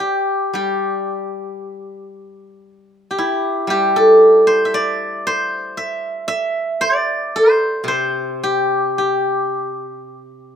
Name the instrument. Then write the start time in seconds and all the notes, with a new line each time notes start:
guzheng
Already playing: C5 D5
0.00 G4
0.54 G3 G4
3.11 G4
3.18 E4
3.67 G3 G4
3.96 A4
4.47 C5
4.65 E5
4.74 D5
5.27 C5
5.77 E5
6.28 E5
6.81 D5
7.36 C5
7.84 C3
7.88 C5
8.43 G4
8.98 G4